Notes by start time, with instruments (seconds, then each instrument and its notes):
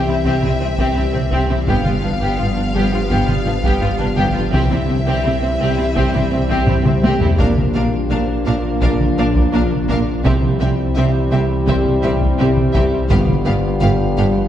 Already playing: sub bass C2, ambient pad E3 G3 G4 C5, trombone section E3 G3, french horn section C4 G4, violin section E5
0.08 cello section C3, viola section C4, violin section E4
0.24 double bass section C2, cello section C3, viola section C4, violin section G4, taiko
0.43 cello section C3, viola section C4, violin section E4, taiko mid
0.61 double bass section C2, cello section C3, viola section C4, violin section C4
0.78 cello section C3, viola section C4, violin section G4, taiko
0.96 double bass section C2, cello section C3, viola section C4, violin section E4
1.14 cello section C3, violin section C4, viola section C4, taiko mid
1.31 double bass section C2, cello section C3, viola section C4, violin section G4, taiko
1.49 cello section C3, viola section C4, violin section E4
1.67 sub bass G1, double bass section G1, cello section G2, trombone section D3, ambient pad F3 B4, viola section B3, french horn section B3 F4, violin section G4 F5, taiko
1.85 cello section G2, viola section B3, violin section F4, taiko mid
2.03 double bass section G1, cello section G2, viola section B3, violin section D4
2.21 cello section G2, viola section B3, violin section G4
2.39 double bass section G1, cello section G2, viola section B3, violin section F4
2.57 cello section G2, viola section B3, violin section D4
2.75 double bass section G1, cello section G2, viola section B3, violin section G4
2.93 cello section G2, viola section B3, violin section F4
3.10 double bass section G1, cello section G2, viola section B3, violin section G4, taiko
3.27 cello section G2, viola section B3, violin section F4, taiko mid
3.46 double bass section G1, cello section G2, viola section B3, violin section D4
3.64 cello section G2, viola section B3, violin section G4, taiko
3.81 double bass section G1, cello section G2, viola section B3, violin section F4
3.99 cello section G2, viola section B3, violin section D4, taiko mid
4.17 double bass section G1, cello section G2, viola section B3, violin section G4, taiko
4.35 cello section G2, viola section B3, violin section F4
4.53 double bass section C2, sub bass C2, cello section C3, ambient pad E3 G3 G4 C5, trombone section G3, viola section C4, french horn section C4 E4, violin section G4 E5, taiko
4.71 cello section C3, viola section C4, violin section E4, taiko mid
4.88 double bass section C2, cello section C3, violin section C4, viola section C4
5.06 cello section C3, viola section C4, violin section G4
5.24 double bass section C2, trombone section C3, cello section C3, viola section C4, violin section E4
5.42 cello section C3, violin section C4, viola section C4
5.60 double bass section C2, cello section C3, viola section C4, violin section G4
5.78 cello section C3, viola section C4, violin section E4
5.95 double bass section C2, cello section C3, viola section C4, violin section G4, taiko
6.14 cello section C3, viola section C4, violin section E4, taiko mid
6.32 double bass section C2, cello section C3, viola section C4, violin section C4
6.49 cello section C3, viola section C4, violin section G4, taiko
6.68 double bass section C2, cello section C3, viola section C4, violin section E4, taiko low-mid
6.85 cello section C3, viola section C4, violin section C4, taiko mid
7.03 double bass section C2, cello section C3, viola section C4, violin section G4, taiko high
7.21 cello section C3, viola section C4, violin section E4, taiko low
7.38 double bass section A#1, sub bass A#1, cello section A#2, trombone section A#2 A#3, ambient pad F3 A#3 F4 D5, viola section D4, french horn section D4 F4, violin section A#4 F5, taiko
7.57 taiko mid
7.74 double bass section A#1, cello section A#2, viola section D4, violin section A#4 F5
8.10 double bass section A#1, cello section A#2, viola section D4, violin section A#4 F5
8.45 double bass section A#1, cello section A#2, viola section D4, violin section A#4 F5
8.81 double bass section A#1, cello section A#2, viola section D4, violin section A#4 F5, taiko
9.00 taiko mid
9.17 double bass section A#1, cello section A#2, viola section D4, violin section A#4 F5
9.35 taiko
9.53 double bass section A#1, cello section A#2, viola section D4, violin section A#4 F5
9.71 taiko mid
9.89 double bass section A#1, cello section A#2, viola section D4, violin section A#4 F5, taiko
10.24 double bass section C2, sub bass C2, trombone section C3 G3, cello section C3, ambient pad E3 G3 G4 C5, viola section C4, french horn section C4 E4, violin section G4 E5, taiko
10.43 taiko mid
10.60 double bass section C2, cello section C3, viola section C4, violin section G4 E5
10.96 double bass section C2, cello section C3, viola section C4, violin section G4 E5
11.31 double bass section C2, cello section C3, viola section C4, violin section G4 E5
11.67 double bass section C2, cello section C3, viola section C4, violin section G4 E5, taiko
11.86 taiko mid
12.02 double bass section C2, cello section C3, viola section C4, violin section G4 E5
12.21 taiko
12.39 double bass section C2, cello section C3, viola section C4, violin section G4 E5
12.57 taiko mid
12.74 double bass section C2, cello section C3, viola section C4, violin section G4 E5, taiko
13.09 double bass section G1, sub bass G1, cello section G2, trombone section D3, ambient pad F3 B4, french horn section B3 F4, viola section B3, violin section G4 F5, taiko
13.28 taiko mid
13.45 double bass section G1, cello section G2, viola section B3, violin section G4 F5
13.81 double bass section G1, cello section G2, viola section B3, violin section G4 F5
14.17 double bass section G1, cello section G2, viola section B3, violin section G4 F5